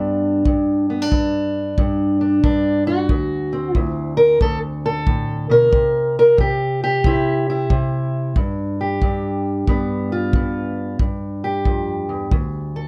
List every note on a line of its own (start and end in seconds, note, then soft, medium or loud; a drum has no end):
0.00 0.45 G2 medium
0.00 0.43 B3 soft
0.00 0.89 D4 medium
0.00 0.22 F4 medium
0.45 1.10 G2 medium
0.45 kick medium
0.90 1.02 B3 soft
1.02 2.20 D4 soft
1.11 1.77 G2 medium
1.11 kick medium
1.78 2.42 G2 medium
1.78 kick medium
2.21 2.43 D4 medium
2.43 3.09 G2 medium
2.43 2.86 D4 medium
2.43 kick medium
2.87 3.76 F#4 medium
3.09 3.74 D2 medium
3.09 kick medium
3.53 5.70 C4 soft
3.75 4.40 D2 medium
3.75 4.17 E4 medium
3.75 kick medium
4.17 4.40 A#4 loud
4.41 5.73 D2 medium
4.41 4.58 A4 loud
4.41 kick medium
4.86 5.50 A4 medium
5.07 5.49 A2 medium
5.07 kick medium
5.50 5.72 B2 medium
5.50 6.16 A#4 loud
5.73 6.36 C3 medium
5.73 kick medium
6.19 6.40 A#4 loud
6.37 7.03 C3 medium
6.37 6.82 G4 medium
6.37 kick medium
6.84 7.71 G4 loud
7.04 7.69 C3 medium
7.04 7.48 E4 medium
7.04 kick medium
7.50 8.37 E4 medium
7.70 8.33 C3 medium
7.70 kick medium
8.36 9.02 G2 medium
8.36 kick medium
8.81 10.99 G4 medium
9.02 9.67 G2 medium
9.02 kick medium
9.68 10.34 G2 medium
9.68 10.98 B3 medium
9.68 kick medium
10.12 10.98 F4 medium
10.33 10.98 G2 medium
10.33 kick medium
10.99 12.33 G2 medium
10.99 kick medium
11.44 12.30 G4 medium
11.65 12.09 F2 medium
11.65 kick medium
12.09 12.32 E2 medium
12.31 12.88 D2 medium
12.31 kick medium
12.76 12.88 A4 medium